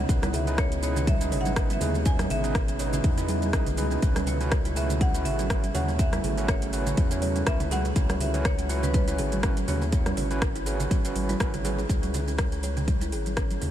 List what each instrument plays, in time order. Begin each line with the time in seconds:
Already playing: analog synth pad B2 C#3 G#3 B3, marimba F#5
0.09 analog synth bass C#2, tine electric piano D#4 E4 G#4 B4, kick, closed hi-hat, shaker
0.22 kalimba E4, cross-stick, closed hi-hat, high conga, shaker
0.33 kalimba G#4, marimba E5, open hi-hat, muted conga, low conga, shaker
0.47 tine electric piano D#4 E4 G#4 B4, closed hi-hat, shaker
0.58 kalimba C#4, marimba C#5, kick, cross-stick, closed hi-hat, shaker
0.72 closed hi-hat, muted conga, shaker
0.83 tine electric piano D#4 E4 G#4 B4, marimba C#5, open hi-hat, shaker
0.96 kalimba C#4, low conga, shaker
1.07 marimba E5, kick, closed hi-hat, muted conga, high conga, shaker
1.21 kalimba C#4, tine electric piano D#4 E4 G#4 B4, closed hi-hat, shaker
1.32 analog synth bass G#1, kalimba C#5, open hi-hat, low conga, shaker
1.41 marimba F#5
1.45 kalimba C#4, closed hi-hat, muted conga, high conga, shaker
1.56 tine electric piano D#4 E4 G#4 B4, kick, cross-stick, closed hi-hat, shaker
1.70 kalimba E4, marimba E5, closed hi-hat, high conga, shaker
1.81 analog synth bass D#2, tine electric piano D#4 E4 G#4 B4, kalimba G#4, open hi-hat, low conga, shaker
1.95 muted conga, shaker
2.06 kalimba C#4, tine electric piano D#4 E4 G#4 B4, marimba G#5, kick, closed hi-hat, shaker
2.19 cross-stick, closed hi-hat, high conga, shaker
2.30 analog synth bass G#1, marimba E5, open hi-hat, muted conga, low conga, shaker
2.44 kalimba C#4, tine electric piano D#4 E4 G#4 B4, closed hi-hat, shaker
2.55 kick, cross-stick, closed hi-hat, shaker
2.68 kalimba C#4, closed hi-hat, muted conga, shaker
2.79 tine electric piano D#4 E4 G#4 B4, kalimba C#5, open hi-hat, shaker
2.93 kalimba C#4, low conga, shaker
3.04 analog synth bass E2, kick, closed hi-hat, muted conga, high conga, shaker
3.17 tine electric piano D#4 E4 G#4 B4, kalimba E4, closed hi-hat, low conga, shaker
3.28 kalimba G#4, open hi-hat, high conga, shaker
3.42 closed hi-hat, muted conga, high conga, shaker
3.53 analog synth bass B1, kalimba C#4, tine electric piano D#4 E4 G#4 B4, kick, cross-stick, closed hi-hat, shaker
3.66 closed hi-hat, low conga, shaker
3.77 analog synth bass C#2, tine electric piano D#4 E4 G#4 B4, open hi-hat, high conga, shaker
3.91 kalimba C#4, closed hi-hat, muted conga, shaker
4.02 analog synth bass C#2, analog synth pad C#3 F#3 A3, kick, closed hi-hat, shaker
4.16 kalimba C#4, cross-stick, closed hi-hat, high conga, shaker
4.26 kalimba C#5, marimba C#5, open hi-hat, muted conga, low conga, shaker
4.41 kalimba C#4, tine electric piano C#4 E4 F#4 B4, closed hi-hat, shaker
4.52 kick, cross-stick, closed hi-hat, shaker
4.65 kalimba E4, closed hi-hat, muted conga, shaker
4.76 tine electric piano C#4 E4 F#4 B4, kalimba G#4, marimba E5, open hi-hat, shaker
4.89 low conga, shaker
5.01 kalimba C#4, marimba F#5, kick, closed hi-hat, muted conga, high conga, shaker
5.14 tine electric piano C#4 E4 F#4 B4, closed hi-hat, shaker
5.25 analog synth bass G#1, marimba E5, open hi-hat, low conga, shaker
5.39 kalimba C#4, closed hi-hat, muted conga, high conga, shaker
5.50 tine electric piano C#4 F#4 B4, kick, cross-stick, closed hi-hat, shaker
5.63 kalimba C#4, closed hi-hat, high conga, shaker
5.74 analog synth bass D#2, tine electric piano C#4 E4 F#4 B4, kalimba C#5, marimba F#5, open hi-hat, low conga, shaker
5.88 kalimba C#4, muted conga, shaker
5.99 tine electric piano C#4 E4 F#4 B4, marimba E5, kick, closed hi-hat, shaker
6.13 kalimba E4, cross-stick, closed hi-hat, high conga, shaker
6.24 analog synth bass G#1, kalimba G#4, open hi-hat, muted conga, low conga, shaker
6.37 tine electric piano C#4 E4 F#4 B4, closed hi-hat, shaker
6.48 kalimba C#4, marimba C#5, kick, cross-stick, closed hi-hat, shaker
6.62 closed hi-hat, muted conga, shaker
6.73 tine electric piano C#4 E4 F#4 B4, open hi-hat, shaker
6.86 kalimba C#4, low conga, shaker
6.97 analog synth bass E2, kick, closed hi-hat, muted conga, high conga, shaker
7.11 tine electric piano C#4 E4 F#4 B4, kalimba C#4, closed hi-hat, shaker
7.22 kalimba C#5, open hi-hat, high conga, shaker
7.36 kalimba C#4, closed hi-hat, muted conga, high conga, shaker
7.47 analog synth bass C#2, tine electric piano C#4 E4 F#4 B4, marimba E5, kick, cross-stick, closed hi-hat, shaker
7.60 kalimba E4, closed hi-hat, low conga, shaker
7.71 tine electric piano C#4 E4 F#4 B4, kalimba G#4, marimba F#5, open hi-hat, high conga, shaker
7.85 closed hi-hat, muted conga, shaker
7.96 analog synth bass C#2, kalimba C#4, tine electric piano C#4 E4 F#4 B4, kick, closed hi-hat, shaker
8.09 cross-stick, closed hi-hat, high conga, shaker
8.21 marimba E5, open hi-hat, muted conga, low conga, shaker
8.34 kalimba C#4, tine electric piano C#4 E4 F#4 B4, closed hi-hat, shaker
8.45 marimba C#5, kick, cross-stick, closed hi-hat, shaker
8.58 kalimba C#4, closed hi-hat, muted conga, shaker
8.69 tine electric piano C#4 E4 F#4 B4, kalimba C#5, marimba C#5, open hi-hat, shaker
8.83 kalimba C#4, marimba B4, low conga, shaker
8.94 marimba B4, kick, closed hi-hat, muted conga, high conga, shaker
9.08 tine electric piano C#4 E4 F#4 B4, kalimba E4, closed hi-hat, shaker
9.18 analog synth bass G#1, kalimba G#4, open hi-hat, low conga, shaker
9.32 closed hi-hat, muted conga, high conga, shaker
9.43 tine electric piano C#4 E4 F#4 B4, kalimba C#4, kick, cross-stick, closed hi-hat, shaker
9.57 closed hi-hat, high conga, shaker
9.68 analog synth bass D#2, tine electric piano C#4 E4 F#4 B4, marimba C#5, open hi-hat, low conga, shaker
9.82 kalimba C#4, muted conga, shaker
9.92 tine electric piano C#4 E4 F#4 B4, kick, closed hi-hat, shaker
10.06 kalimba C#4, cross-stick, closed hi-hat, high conga, shaker
10.17 analog synth bass G#1, kalimba C#5, open hi-hat, muted conga, low conga, shaker
10.31 kalimba C#4, tine electric piano C#4 E4 F#4 B4, closed hi-hat, shaker
10.42 kick, cross-stick, closed hi-hat, shaker
10.55 kalimba E4, closed hi-hat, muted conga, shaker
10.66 tine electric piano C#4 E4 F#4 B4, kalimba G#4, open hi-hat, shaker
10.80 closed hi-hat, low conga, shaker
10.91 kalimba C#4, kick, closed hi-hat, muted conga, high conga, shaker
11.05 tine electric piano C#4 E4 F#4 B4, closed hi-hat, shaker
11.15 analog synth bass G#1, open hi-hat, high conga, shaker
11.29 kalimba E4, closed hi-hat, muted conga, high conga, shaker
11.40 analog synth bass G#1, tine electric piano C#4 E4 F#4 B4, kalimba C#5, kick, cross-stick, closed hi-hat, shaker
11.54 kalimba C#4, closed hi-hat, high conga, low conga, shaker
11.64 tine electric piano C#4 E4 F#4 B4, kalimba G#4, open hi-hat, high conga, shaker
11.78 kalimba G#4, muted conga, shaker
11.89 analog synth bass C#2, kalimba C#4, kick, closed hi-hat, muted conga, shaker
12.03 closed hi-hat, high conga, shaker
12.14 open hi-hat, muted conga, low conga, shaker
12.28 kalimba C#4, shaker
12.38 kick, cross-stick, closed hi-hat, muted conga, shaker
12.52 kalimba C#4, closed hi-hat, shaker
12.63 kalimba C#5, open hi-hat, muted conga, shaker
12.77 kalimba C#4, closed hi-hat, low conga, shaker
12.88 kick, closed hi-hat, high conga, shaker
13.01 kalimba E4, closed hi-hat, muted conga, shaker
13.12 analog synth bass G#1, kalimba G#4, open hi-hat, shaker
13.26 closed hi-hat, muted conga, high conga, shaker
13.37 kalimba C#4, kick, cross-stick, closed hi-hat, shaker
13.51 closed hi-hat, muted conga, high conga, shaker
13.61 analog synth bass D#2, open hi-hat, low conga, shaker